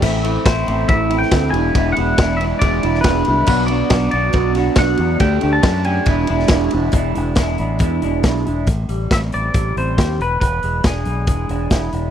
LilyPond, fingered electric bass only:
\new Staff \with { instrumentName = "Fingered electric bass" } { \clef bass \time 4/4 \key e \minor \tempo 4 = 139 a,,4 a,,8 a,,8 a,,4 d,8 e,,8 | e,,8 e,,8 e,,4 e,,8 e,,8 e,,8 c,8 | b,,4 b,,8 b,,8 b,,4 b,,8 e,8 | d,8 d,8 fis,4 e,,8 e,,8 e,,8 e,,8 |
e,,8 e,,8 e,,8 a,,8 e,8 e,,8 b,,8 e,,8 | a,,8 a,,8 a,,8 a,,8 a,,8 a,,8 dis,8 e,,8 | e,,8 e,,8 e,,8 b,,8 e,,8 e,,8 e,,8 e,,8 | }